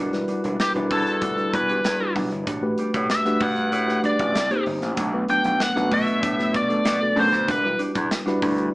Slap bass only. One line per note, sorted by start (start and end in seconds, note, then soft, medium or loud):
0.00 0.23 E1 loud
0.44 0.57 E1 medium
0.75 0.88 E1 medium
0.91 1.22 E2 loud
1.22 1.48 D2 medium
1.54 1.80 E2 medium
1.85 1.98 E2 medium
2.15 2.29 B1 medium
2.31 2.47 G1 medium
2.47 2.73 A1 loud
2.94 3.07 A2 medium
3.41 3.73 G2 medium
3.73 3.99 A2 loud
4.19 4.33 A1 medium
4.35 4.48 C2 medium
4.66 4.79 G1 medium
4.82 4.95 A1 medium
4.97 5.23 B1 loud
5.45 5.58 B1 medium
5.76 5.89 B1 medium
5.92 6.23 B2 loud
6.23 6.55 A2 loud
6.55 6.81 B2 medium
6.85 6.98 B2 medium
7.16 7.29 F#2 medium
7.32 7.50 D2 medium
7.48 7.74 E1 loud
7.96 8.08 E2 loud
8.42 8.68 D2 medium